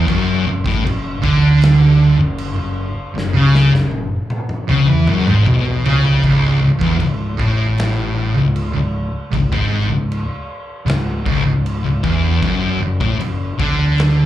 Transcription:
0.08 F#1 F#2, kick, crash
0.46 F#1 F#2
0.66 A1 A2, kick, snare
0.85 F#1 F#2, crash
1.24 D2 D3, kick
1.62 snare, crash
2.19 F#1 F#2
2.38 crash
2.57 F#1 F#2
3.15 F#1 F#2, snare
3.34 C#2 C#3
3.55 snare
3.72 F#1 F#2, snare
3.91 high tom
4.30 high tom
4.49 mid tom
4.69 C#2 C#3, mid tom
4.89 E2 E3
5.07 F#1 F#2, mid tom
5.27 G#1 G#2, mid tom
5.46 B1 B2, mid tom
5.86 C#2 C#3, floor tom
6.05 floor tom
6.23 C#1 C#2, kick, crash
6.62 C#1 C#2
6.78 E1 E2, kick
6.83 E2
7.00 C#1 C#2, crash
7.40 A1 A2, kick
7.78 snare, crash
8.37 C#1 C#2
8.56 crash
8.74 C#1 C#2
9.33 C#1 C#2, kick, crash
9.52 G#1 G#2, kick
9.89 C#1 C#2
10.12 crash
10.85 C#1 C#2, crash
10.90 snare
11.26 C#1 C#2, kick
11.44 C#1 C#2
11.66 crash
11.84 C#1 C#2
12.03 E1 E2, kick
12.42 F#1 F#2, kick, crash
12.80 F#1 F#2
13.00 A1 A2, kick
13.19 F#1 F#2, crash
13.58 D2 D3, kick
13.98 snare, crash

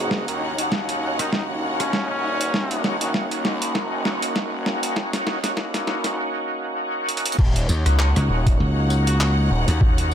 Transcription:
Already playing: F#1 A#3 C#4 D#4 F#4 C#5 F#5
0.11 kick, snare
0.28 D#2, closed hi-hat
0.58 A#3 C#4 D#4 F#4, closed hi-hat
0.72 kick, snare
0.89 closed hi-hat
1.19 D#2 D#4, cross-stick, closed hi-hat
1.32 D#4, kick, snare
1.80 C#4, cross-stick, closed hi-hat
1.93 kick, snare
2.10 D#1 C#4
2.41 closed hi-hat
2.54 D#1, kick, snare
2.71 closed hi-hat
2.84 G#1, snare
3.01 A#3 C#4 D#4 F#4, closed hi-hat
3.14 kick, snare
3.31 D#2, closed hi-hat
3.45 snare
3.62 closed hi-hat
3.75 F#1, kick, snare
4.05 G#1, snare
4.22 F#1, closed hi-hat
4.35 kick, snare
4.66 snare
4.83 closed hi-hat
4.96 kick, snare
5.13 D#2, snare, closed hi-hat
5.27 snare
5.43 A#3 C#4 D#4 F#4, snare, closed hi-hat
5.57 kick, snare
5.74 snare, closed hi-hat
5.87 snare
6.04 D#1, snare, closed hi-hat
7.09 closed hi-hat
7.17 closed hi-hat
7.26 closed hi-hat
7.32 closed hi-hat
7.39 D#1 D#4 C#5 F#5, kick, crash
7.56 closed hi-hat
7.69 D#2, tambourine
7.86 C#2 A#3 C#4 D#4 F#4, cross-stick, closed hi-hat
7.99 clap
8.16 C#2, cross-stick, closed hi-hat
8.29 D#1
8.47 kick, closed hi-hat
8.60 C#2
8.90 tambourine
9.07 F#4, closed hi-hat
9.20 F#4, clap
9.51 D#1
9.68 D#2, closed hi-hat
9.81 kick
9.98 closed hi-hat

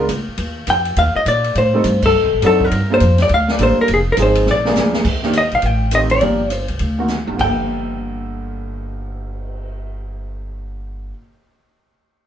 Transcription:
0.09 D2, kick, hi-hat pedal, ride
0.28 muted upright bass stroke
0.38 D#2, kick, ride
0.67 F2 G5, kick, hi-hat pedal, ride
0.85 ride
0.96 D#2 F5, kick, ride
1.16 D#5, muted upright bass stroke
1.26 A#2 D5, kick, hi-hat pedal, ride
1.44 ride
1.55 A2 C5, kick, ride
1.73 G3 A3 C4 D#4 A4
1.84 G2, kick, hi-hat pedal, ride
2.02 A4, kick, crash
2.14 D2
2.23 C2
2.33 A1
2.42 F#2 F#3 C4 D4 D#4 F#4, kick, hi-hat pedal, ride
2.47 A4
2.61 A#4, kick
2.71 G2, kick, ride
2.90 G3 A#3 D4 F4 A4 C5
3.00 F2, kick, hi-hat pedal, ride
3.18 snare, ride
3.22 D5
3.29 D2, kick, ride
3.34 F5
3.48 D5, snare
3.59 A1 G3 A#3 D4 F4 A4, kick, hi-hat pedal, ride
3.63 C5
3.81 A#4
3.88 F1, kick, ride
3.94 G#4
4.12 A#4
4.17 G#1 F3 G#3 C4 D#4 G#4, kick, hi-hat pedal, ride
4.22 C5
4.35 ride
4.46 A#1, snare
4.51 D5
4.65 F3 G#3 A#3 D4 G#4, snare
4.75 D2, snare, hi-hat pedal
4.94 snare
5.05 D#2, kick, crash
5.23 D#3 A#3 D4 G4, snare
5.33 hi-hat pedal, ride
5.38 D#5
5.51 A#1 F5, ride
5.62 A1 G5, kick, ride
5.91 D#3 A3 C4 G4 D#5, hi-hat pedal, ride
6.10 D5, ride
6.21 G1 F3 A#3 D4 G4, kick, ride
6.50 C5, hi-hat pedal, ride
6.68 C#2, ride
6.79 D2, kick, ride
6.98 D#3 A#3 C4 F#4
7.08 snare, hi-hat pedal
7.27 F#1, high tom
7.32 G2 D3
7.38 G1 F3 A#3 G5, kick, crash
7.44 A4
7.57 cymbal swell

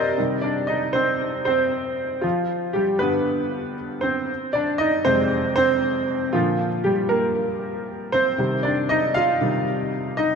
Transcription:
Already playing: C2 G2 C4 G4 A#4 C5 D5 D#5
0.18 C3 D#3 G3
0.41 D4 D5
0.67 D#4 D#5
0.93 C4 C5
1.45 C4 C5
2.21 F3 F4
2.73 G3 G4
2.99 G2 D3 B3 B4
4.01 C4 C5
4.53 D4 D5
4.78 D#4 D#5
5.05 F2 C3 G#3 C4 C5
5.56 C4 C5
6.33 A#2 D3 F3 F4
6.84 G3 G4
7.09 A#3 A#4
8.12 C4 C5
8.38 C3 D#3 G3
8.63 D4 D5
8.89 D#4 D#5
9.14 F4 F5
9.41 C3 D#3 G3
10.17 D#4 D#5

